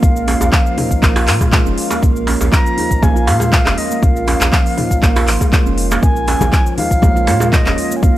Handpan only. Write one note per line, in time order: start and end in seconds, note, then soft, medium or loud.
0.03 0.15 A#3 medium
0.28 0.40 C#4 medium
0.53 0.65 F3 medium
0.78 0.85 D#4 medium
1.03 1.10 A#3 medium
1.16 1.26 F4 loud
1.41 1.52 G#3 medium
1.66 1.77 C#4 medium
1.91 2.01 A#3 medium
2.03 2.15 A#3 medium
2.27 2.40 C#4 medium
2.52 2.65 F3 medium
2.77 2.85 D#4 medium
3.02 3.10 A#3 medium
3.16 3.26 F4 loud
3.41 3.52 G#3 medium
3.66 3.77 C#4 medium
3.91 4.01 A#3 medium
4.02 4.15 A#3 medium
4.28 4.40 C#4 medium
4.53 4.65 F3 medium
4.78 4.85 D#4 medium
5.03 5.10 A#3 medium
5.16 5.27 F4 loud
5.41 5.52 G#3 medium
5.66 5.77 C#4 medium
5.91 6.02 A#3 medium
6.03 6.15 A#3 medium
6.28 6.40 C#4 medium
6.53 6.65 F3 medium
6.78 6.85 D#4 medium
7.03 7.10 A#3 medium
7.16 7.27 F4 loud
7.41 7.52 G#3 medium
7.66 7.77 C#4 medium
7.91 8.02 A#3 medium
8.03 8.15 A#3 medium